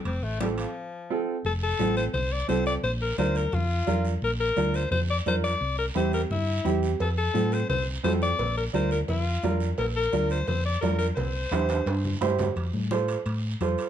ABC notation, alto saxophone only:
X:1
M:4/4
L:1/8
Q:1/4=173
K:F
V:1 name="Alto saxophone"
C A, G, F,4 z | A A2 c c d c d | c B c B F3 z | B B2 c c d c d- |
d B c B E3 z | A A2 c c z c d- | d B c B F3 z | B B2 c c d B B |
c6 z2 | z8 |]